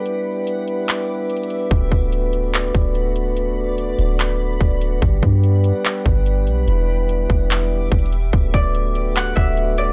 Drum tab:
HH |x-----x--x--x-----xxxx--|x-----x--x--x-----x--x--|x-----x--x--x-----x--x--|x-----x--x--x-----x--x--|
CP |------------x-----------|------------x-----------|------------x-----------|------------x-----------|
BD |------------------------|o--o-----------o--------|------------------o-----|o--o-----------o--------|

HH |x-----x--x--x-----xxxx--|x-----x--x--x-----x--x--|
CP |------------x-----------|------------x-----------|
BD |---------o--------o-----|o--o-----------o--------|